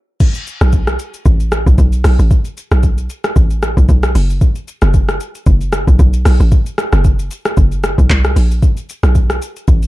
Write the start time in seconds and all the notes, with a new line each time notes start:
0.20 kick, crash, shaker
0.34 shaker
0.47 shaker
0.61 B1, cross-stick, shaker
0.73 kick, shaker
0.87 cross-stick, shaker
0.99 shaker
1.14 shaker
1.25 A1, kick, shaker
1.40 shaker
1.52 cross-stick, shaker
1.66 B1, kick, shaker
1.78 B1, kick, shaker
1.92 shaker
2.04 B1, cross-stick, open hi-hat, shaker
2.19 A1, shaker
2.31 kick, shaker
2.45 shaker
2.57 shaker
2.71 B1, cross-stick, shaker
2.83 kick, shaker
2.98 shaker
3.10 shaker
3.24 cross-stick, shaker
3.36 A1, kick, shaker
3.50 shaker
3.63 cross-stick, shaker
3.77 B1, kick, shaker
3.89 B1, kick, shaker
4.03 cross-stick, shaker
4.15 F#1, open hi-hat, shaker
4.30 shaker
4.41 kick, shaker
4.55 shaker
4.68 shaker
4.82 F#1, cross-stick, shaker
4.94 kick, shaker
5.09 cross-stick, shaker
5.20 shaker
5.35 shaker
5.46 F#1, kick, shaker
5.61 shaker
5.73 cross-stick, shaker
5.87 B1, kick, shaker
5.99 B1, kick, shaker
6.13 shaker
6.25 B1, cross-stick, open hi-hat, shaker
6.40 A1, shaker
6.52 kick, shaker
6.66 shaker
6.78 cross-stick, shaker
6.92 F#1, cross-stick, shaker
7.04 kick, shaker
7.19 shaker
7.31 shaker
7.45 cross-stick, shaker
7.57 F#1, kick, shaker
7.72 shaker
7.84 cross-stick, shaker
7.98 B1, kick, shaker
8.10 C2, kick, clap, shaker
8.24 cross-stick, shaker
8.36 A#1, open hi-hat, shaker
8.51 shaker
8.63 kick, shaker
8.77 shaker
8.89 shaker
9.03 B1, cross-stick, shaker
9.15 kick, shaker
9.30 cross-stick, shaker
9.42 shaker
9.56 shaker
9.68 A1, kick, shaker
9.82 shaker